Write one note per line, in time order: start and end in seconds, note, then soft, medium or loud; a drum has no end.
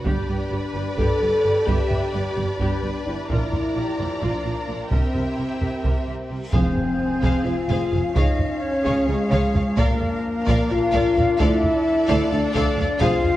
0.05 0.13 G1 medium
0.05 0.13 G2 medium
0.05 0.94 D4 medium
0.05 4.91 D4 medium
0.05 0.27 G4 medium
0.05 3.29 G4 medium
0.05 0.52 G4 medium
0.05 3.25 B4 medium
0.05 4.91 D5 medium
0.05 3.29 D5 medium
0.05 3.25 B5 medium
0.05 taiko medium
0.28 0.36 G1 medium
0.28 0.36 G2 medium
0.28 0.37 G4 medium
0.51 0.59 G1 medium
0.51 0.59 G2 medium
0.51 0.59 G4 medium
0.51 0.98 B4 medium
0.74 0.83 G1 medium
0.74 0.82 G2 medium
0.74 0.82 G4 medium
0.97 1.05 G1 medium
0.97 1.05 G2 medium
0.97 1.20 G4 medium
0.97 1.67 A4 loud
0.97 1.67 D5 medium
0.97 taiko medium
1.20 1.29 G1 medium
1.20 1.28 G2 medium
1.20 1.29 G4 medium
1.44 1.52 G1 medium
1.44 1.52 G2 medium
1.44 1.52 G4 medium
1.67 1.75 G1 medium
1.67 1.75 G2 medium
1.67 2.60 G4 medium
1.67 1.89 G4 medium
1.67 2.14 E5 medium
1.67 taiko medium
1.90 1.98 G1 medium
1.90 1.98 G2 medium
1.90 1.98 G4 medium
1.90 taiko low soft
2.13 2.22 G1 medium
2.13 2.21 G2 medium
2.13 2.21 G4 medium
2.13 2.60 D5 medium
2.36 2.45 G1 medium
2.36 2.45 G2 medium
2.36 2.44 G4 medium
2.36 taiko low soft
2.59 2.67 G1 medium
2.59 2.68 G2 medium
2.59 3.06 D4 medium
2.59 2.82 G4 medium
2.59 3.29 B4 medium
2.59 taiko medium
2.83 2.91 G1 soft
2.83 2.91 G2 medium
2.83 2.93 G4 medium
3.07 3.15 G1 medium
3.07 3.15 G2 medium
3.07 4.22 E4 medium
3.07 3.16 G4 medium
3.29 3.38 A#1 medium
3.29 3.38 A#2 medium
3.29 4.92 F3 medium
3.29 3.51 F4 medium
3.29 6.54 A#4 medium
3.29 3.76 A#4 medium
3.29 4.88 D5 medium
3.29 4.89 D5 medium
3.29 4.88 A#5 medium
3.29 taiko medium
3.53 3.61 A#1 medium
3.53 3.61 A#2 medium
3.53 3.61 F4 medium
3.53 taiko low soft
3.75 3.84 A#1 medium
3.75 3.84 A#2 medium
3.75 3.84 F4 medium
3.75 4.21 G4 medium
3.98 4.07 A#1 soft
3.98 4.07 A#2 soft
3.98 4.06 F4 soft
3.98 taiko low soft
4.21 4.30 A#1 medium
4.21 4.30 A#2 medium
4.21 4.91 D4 medium
4.21 4.43 F4 medium
4.21 4.92 F4 medium
4.21 taiko medium
4.45 4.53 A#1 soft
4.45 4.53 A#2 soft
4.45 4.53 F4 soft
4.68 4.77 A#1 soft
4.68 4.76 A#2 soft
4.68 4.76 F4 soft
4.90 4.99 C2 medium
4.90 4.99 C3 medium
4.90 6.51 C4 medium
4.90 6.28 C4 medium
4.90 6.30 E4 medium
4.90 6.53 G4 medium
4.90 5.13 A#4 medium
4.90 6.30 C5 medium
4.90 6.53 E5 medium
4.90 6.31 E5 medium
4.90 6.34 G5 medium
4.90 taiko medium
4.90 reverse cymbal medium
5.15 5.23 C2 soft
5.15 5.23 C3 soft
5.15 5.23 A#4 soft
5.15 taiko low soft
5.37 5.45 C2 soft
5.37 5.46 C3 soft
5.37 5.46 A#4 soft
5.61 5.69 C2 soft
5.61 5.69 C3 soft
5.61 5.69 A#4 soft
5.61 taiko low soft
5.83 5.91 C2 medium
5.83 5.92 C3 medium
5.83 6.05 A#4 medium
5.83 taiko medium
6.07 6.15 C2 soft
6.07 6.15 C3 soft
6.07 6.15 A#4 soft
6.30 6.39 C2 soft
6.30 6.39 C3 soft
6.30 6.38 A#4 soft
6.51 6.61 F1 medium
6.51 7.19 F2 medium
6.51 6.61 F2 medium
6.51 12.97 F3 medium
6.51 8.11 C4 medium
6.51 7.42 C4 medium
6.51 8.11 G#4 medium
6.51 6.75 G#4 medium
6.51 6.75 C5 medium
6.51 7.48 C5 medium
6.51 6.74 F5 medium
6.51 11.35 F5 medium
6.51 taiko medium
6.51 impact medium
6.76 taiko low medium
7.22 7.31 F1 medium
7.22 7.30 F2 medium
7.22 7.44 G#4 medium
7.22 7.45 C5 medium
7.22 7.44 F5 medium
7.22 taiko medium
7.45 7.54 F1 medium
7.45 7.53 F2 medium
7.45 8.15 F4 medium
7.45 7.54 G#4 medium
7.45 7.54 C5 medium
7.45 7.53 F5 medium
7.45 8.15 F5 medium
7.69 7.77 F1 medium
7.69 7.77 F2 medium
7.69 7.91 G#4 medium
7.69 7.91 C5 medium
7.69 7.90 F5 medium
7.69 taiko medium
7.91 8.00 F1 medium
7.91 8.00 F2 medium
7.91 8.01 G#4 medium
7.91 8.02 C5 medium
7.91 7.99 F5 medium
7.91 taiko low medium
8.14 8.23 C#2 medium
8.14 8.23 C#3 medium
8.14 9.78 C#4 medium
8.14 8.61 D#4 medium
8.14 8.37 G#4 medium
8.14 9.77 C#5 medium
8.14 8.38 C#5 medium
8.14 8.63 D#5 medium
8.14 8.37 F5 medium
8.14 taiko medium
8.39 taiko low soft
8.61 9.08 C#4 loud
8.61 9.08 C#5 medium
8.84 8.93 C#2 medium
8.84 8.93 C#3 medium
8.84 9.06 G#4 medium
8.84 9.06 C#5 medium
8.84 9.06 F5 medium
8.84 taiko medium
9.07 9.17 C#2 medium
9.07 9.16 C#3 medium
9.07 9.78 G#3 loud
9.07 9.79 G#4 medium
9.07 9.17 G#4 medium
9.07 9.17 C#5 medium
9.07 9.15 F5 medium
9.30 9.40 C#2 medium
9.30 9.38 C#3 medium
9.30 9.52 G#4 medium
9.30 9.53 C#5 medium
9.30 9.53 F5 medium
9.30 taiko medium
9.54 9.64 C#2 medium
9.54 9.62 C#3 medium
9.54 9.62 G#4 medium
9.54 9.62 C#5 medium
9.54 9.64 F5 medium
9.54 taiko low medium
9.77 9.86 A#1 medium
9.77 9.85 A#2 medium
9.77 10.69 A#3 loud
9.77 13.02 D4 medium
9.77 9.99 A#4 medium
9.77 10.73 A#4 medium
9.77 11.40 A#4 medium
9.77 9.99 D5 medium
9.77 9.99 F5 medium
9.77 taiko medium
10.02 taiko low medium
10.46 10.55 A#1 medium
10.46 10.55 A#2 medium
10.46 10.68 A#4 medium
10.46 10.68 D5 medium
10.46 10.69 F5 loud
10.46 taiko medium
10.69 10.78 A#1 medium
10.69 10.78 A#2 medium
10.69 11.39 F4 loud
10.69 10.78 A#4 medium
10.69 10.77 D5 medium
10.69 10.78 F5 medium
10.69 11.40 F5 loud
10.92 11.01 A#1 medium
10.92 11.01 A#2 medium
10.92 11.15 A#4 medium
10.92 11.15 D5 medium
10.92 11.12 F5 medium
10.92 taiko medium
11.13 11.24 A#1 medium
11.13 11.24 A#2 medium
11.13 11.24 A#4 medium
11.13 11.25 D5 medium
11.13 11.21 F5 medium
11.13 taiko low medium
11.37 11.47 D2 loud
11.37 12.31 E4 loud
11.37 11.61 A4 loud
11.37 13.02 A4 loud
11.37 11.61 D5 medium
11.37 13.02 D5 loud
11.37 12.32 E5 loud
11.37 11.60 F5 medium
11.37 taiko medium
11.63 taiko low medium
12.07 12.16 D2 loud
12.07 12.17 D2 loud
12.07 12.30 A4 loud
12.07 12.30 D5 medium
12.07 12.29 F5 loud
12.07 taiko medium
12.32 12.40 D2 medium
12.32 13.00 D4 loud
12.32 12.40 A4 medium
12.32 13.03 D5 loud
12.32 12.40 D5 medium
12.32 12.40 F5 medium
12.53 12.63 D2 loud
12.53 12.76 A4 loud
12.53 12.77 D5 loud
12.53 12.76 F5 loud
12.53 taiko medium
12.77 12.86 D2 medium
12.77 12.87 D2 medium
12.77 12.86 A4 medium
12.77 12.87 D5 medium
12.77 12.85 F5 medium
12.77 taiko low medium
12.99 13.09 F1 loud
12.99 13.09 F2 loud
12.99 13.37 G#3 loud
12.99 13.37 C4 loud
12.99 13.37 F4 loud
12.99 13.22 G#4 loud
12.99 13.23 C5 loud
12.99 13.22 F5 loud
12.99 13.37 F5 loud
12.99 taiko loud
13.24 taiko low medium